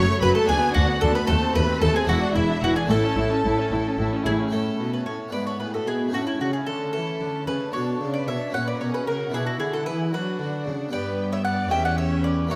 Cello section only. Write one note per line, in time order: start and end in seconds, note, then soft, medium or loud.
0.23 0.31 F#2 medium
0.50 0.58 D2 medium
0.76 0.84 D2 medium
1.02 1.10 D2 medium
1.28 1.36 D#2 medium
1.55 1.63 D#2 medium
1.82 1.90 D#2 medium
2.08 2.16 E2 medium
2.35 2.43 E2 medium
2.63 2.71 E2 medium
2.89 2.97 A2 medium
3.16 3.24 A2 medium
3.44 3.52 A2 medium
3.71 3.79 A2 medium
3.98 4.06 A2 medium
4.25 4.33 A2 medium
4.51 4.77 A2 soft
4.78 5.05 B2 soft
5.05 5.13 A2 soft
5.33 5.59 G#2 soft
5.60 5.86 A2 soft
5.87 6.13 B2 soft
6.14 6.40 A2 soft
6.40 6.48 C#3 soft
6.67 6.93 D3 soft
6.94 7.02 E3 soft
7.20 7.28 D3 soft
7.46 7.54 C#3 soft
7.74 8.00 B2 medium
8.01 8.27 C#3 soft
8.27 8.35 B2 soft
8.54 8.80 A#2 soft
8.80 8.88 B2 soft
9.06 9.32 C#3 soft
9.33 9.59 B2 medium
9.60 9.86 D3 medium
9.86 10.12 E3 medium
10.14 10.39 F#3 soft
10.39 10.47 D3 medium
10.67 10.75 C#3 medium
10.93 11.68 G2 medium
11.72 12.51 E2 soft
12.52 12.55 F#2 medium